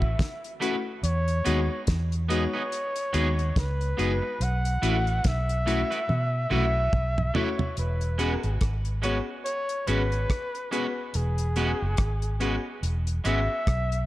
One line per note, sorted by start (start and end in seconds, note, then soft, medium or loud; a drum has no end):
0.00 0.14 A1 medium
0.00 0.57 E5 loud
0.00 kick medium
0.19 kick loud
0.19 snare loud
0.19 closed hi-hat loud
0.44 closed hi-hat soft
0.60 0.74 A3 medium
0.60 0.76 A3 medium
0.60 0.76 C#4 medium
0.60 0.75 E4 medium
0.60 0.76 E4 medium
0.60 0.75 F#4 medium
0.60 0.77 F#4 loud
0.60 0.75 B4 loud
0.60 closed hi-hat medium
1.03 1.40 E2 loud
1.03 1.84 C#5 loud
1.03 closed hi-hat medium
1.28 closed hi-hat soft
1.45 1.67 D#2 medium
1.45 1.61 G#3 medium
1.45 1.59 B3 medium
1.45 1.61 B3 medium
1.45 1.59 D#4 medium
1.45 1.61 D#4 medium
1.45 1.61 F#4 loud
1.45 1.59 G#4 medium
1.45 1.59 B4 medium
1.45 closed hi-hat medium
1.87 2.45 E2 loud
1.87 kick loud
1.87 snare loud
1.87 closed hi-hat loud
2.12 closed hi-hat soft
2.29 2.45 G#3 medium
2.29 2.43 B3 medium
2.29 2.45 B3 medium
2.29 2.43 D#4 medium
2.29 2.45 D#4 medium
2.29 2.45 F#4 loud
2.29 2.43 G#4 medium
2.29 2.44 B4 medium
2.29 3.60 C#5 loud
2.29 closed hi-hat medium
2.53 2.62 B3 soft
2.53 2.62 D#4 medium
2.53 2.62 G#4 medium
2.53 2.61 B4 medium
2.72 closed hi-hat medium
2.96 closed hi-hat medium
3.13 3.50 D#2 medium
3.13 3.29 G#3 medium
3.13 3.27 B3 medium
3.13 3.29 B3 medium
3.13 3.27 D#4 medium
3.13 3.30 D#4 medium
3.13 3.29 F#4 medium
3.13 3.27 G#4 medium
3.13 3.28 B4 medium
3.13 closed hi-hat medium
3.39 closed hi-hat soft
3.56 3.93 C#2 loud
3.56 4.45 B4 medium
3.56 kick loud
3.56 snare loud
3.56 closed hi-hat loud
3.81 closed hi-hat soft
3.97 4.20 F#1 medium
3.97 4.13 G#3 medium
3.97 4.11 B3 medium
3.97 4.13 B3 medium
3.97 4.12 D#4 medium
3.97 4.14 D#4 medium
3.97 4.13 F#4 loud
3.97 4.12 G#4 medium
3.97 4.12 B4 medium
3.97 closed hi-hat medium
4.22 muted clean electric guitar stroke soft
4.40 4.77 B1 loud
4.40 5.29 F#5 loud
4.40 closed hi-hat medium
4.65 closed hi-hat medium
4.82 5.19 A1 medium
4.82 4.96 A3 medium
4.82 4.98 A3 medium
4.82 4.98 C#4 medium
4.82 4.96 E4 medium
4.82 4.98 E4 medium
4.82 4.96 F#4 medium
4.82 4.98 F#4 loud
4.82 4.96 B4 medium
4.82 closed hi-hat medium
5.07 closed hi-hat soft
5.24 5.82 B1 loud
5.24 6.51 E5 loud
5.24 kick loud
5.24 snare loud
5.24 closed hi-hat loud
5.49 closed hi-hat medium
5.66 5.80 A3 medium
5.66 5.82 A3 loud
5.66 5.82 C#4 medium
5.66 5.80 E4 medium
5.66 5.82 E4 medium
5.66 5.80 F#4 medium
5.66 5.82 F#4 loud
5.66 5.81 B4 loud
5.66 closed hi-hat medium
5.91 5.99 A3 medium
5.91 5.99 E4 medium
5.91 5.99 F#4 medium
5.91 5.98 B4 medium
5.91 closed hi-hat soft
6.09 6.45 B2 loud
6.09 high tom medium
6.50 6.87 B1 medium
6.50 6.64 A3 medium
6.50 6.66 A3 medium
6.50 6.66 C#4 medium
6.50 6.64 E4 medium
6.50 6.66 E4 medium
6.50 6.64 F#4 medium
6.50 6.66 F#4 medium
6.50 6.65 B4 loud
6.50 7.37 E5 loud
6.50 mid tom medium
6.93 7.30 B1 medium
6.93 kick loud
6.93 mid tom medium
7.18 mid tom medium
7.34 7.48 A3 medium
7.34 7.50 A3 medium
7.34 7.50 C#4 medium
7.34 7.48 E4 medium
7.34 7.51 E4 medium
7.34 7.48 F#4 medium
7.34 7.51 F#4 loud
7.34 7.49 B4 medium
7.34 7.78 C#5 medium
7.34 floor tom loud
7.59 floor tom loud
7.77 8.35 E1 medium
7.77 8.58 B4 medium
7.77 closed hi-hat medium
8.01 closed hi-hat soft
8.18 8.32 G#3 medium
8.18 8.34 B3 medium
8.18 8.33 C#4 medium
8.18 8.34 C#4 medium
8.18 8.34 F#4 medium
8.18 8.33 F#4 medium
8.18 8.34 G#4 medium
8.18 8.33 B4 loud
8.18 closed hi-hat medium
8.43 8.59 G#1 medium
8.43 closed hi-hat soft
8.61 9.19 G#1 medium
8.61 kick loud
8.61 cross-stick loud
8.61 closed hi-hat medium
8.85 closed hi-hat soft
9.02 9.16 G#3 medium
9.02 9.19 B3 medium
9.02 9.17 C#4 medium
9.02 9.19 C#4 medium
9.02 9.17 F#4 medium
9.02 9.19 F#4 medium
9.02 9.19 G#4 medium
9.02 9.17 B4 medium
9.02 9.19 C#5 loud
9.02 closed hi-hat medium
9.30 9.36 F#4 soft
9.30 9.36 G#4 soft
9.44 9.89 C#5 loud
9.44 closed hi-hat medium
9.69 closed hi-hat medium
9.87 10.24 G#1 medium
9.87 10.01 G#3 medium
9.87 10.03 B3 medium
9.87 10.01 C#4 medium
9.87 10.03 C#4 medium
9.87 10.02 F#4 medium
9.87 10.03 F#4 medium
9.87 10.03 G#4 medium
9.87 10.72 B4 loud
9.87 10.02 B4 medium
9.87 closed hi-hat medium
10.12 closed hi-hat soft
10.30 kick loud
10.30 cross-stick loud
10.30 closed hi-hat medium
10.55 closed hi-hat soft
10.71 10.85 G#3 medium
10.71 10.87 B3 medium
10.71 10.85 C#4 medium
10.71 10.87 C#4 medium
10.71 10.86 F#4 medium
10.71 10.88 F#4 medium
10.71 10.88 G#4 medium
10.71 11.18 B4 medium
10.71 10.86 B4 medium
10.71 closed hi-hat medium
11.14 11.72 E1 loud
11.14 12.84 G#4 medium
11.14 closed hi-hat medium
11.38 closed hi-hat soft
11.56 11.70 G#3 medium
11.56 11.72 B3 medium
11.56 11.72 C#4 medium
11.56 11.70 C#4 medium
11.56 11.72 F#4 medium
11.56 11.70 F#4 medium
11.56 11.72 G#4 medium
11.56 11.71 B4 medium
11.56 closed hi-hat medium
11.82 11.97 F#1 medium
11.97 12.56 G#1 medium
11.97 kick loud
11.97 cross-stick loud
11.97 closed hi-hat medium
12.22 closed hi-hat soft
12.40 12.54 G#3 medium
12.40 12.56 B3 medium
12.40 12.54 C#4 medium
12.40 12.56 C#4 medium
12.40 12.56 F#4 medium
12.40 12.55 F#4 medium
12.40 12.56 G#4 medium
12.40 12.55 B4 medium
12.40 closed hi-hat medium
12.66 12.73 F#4 soft
12.66 12.73 G#4 soft
12.83 13.19 E1 medium
12.83 closed hi-hat medium
13.07 closed hi-hat medium
13.24 13.47 G#1 medium
13.24 13.38 G#3 medium
13.24 13.41 B3 medium
13.24 13.39 C#4 loud
13.24 13.41 C#4 medium
13.24 13.39 F#4 medium
13.24 13.41 F#4 medium
13.24 13.41 G#4 medium
13.24 13.39 B4 medium
13.24 14.06 E5 loud
13.24 closed hi-hat medium
13.67 14.06 B1 loud
13.67 kick loud
13.67 cross-stick loud
13.67 closed hi-hat medium
13.92 closed hi-hat soft